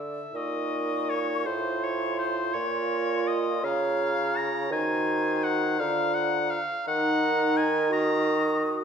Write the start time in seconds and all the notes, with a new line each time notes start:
Already playing: D3 A4 E5
0.32 A#2 D#4 A#4 D#5 C#6
1.10 C#5
1.45 A2 F4 C5 C6
1.84 C#5
2.19 C5
2.54 A#2 A#4 C#5
3.28 D#5
3.63 C#3 C#5 F5 A#5
4.37 A#5
4.71 D#3 F#4 C5 G#5 A#5
5.44 F#5
5.79 D3 F4 F5 A#5
6.14 F#5
6.50 F5
6.85 D#3 D#4 A#4 F#5 A#5
7.57 G#5
7.90 F#4 A#5 D#6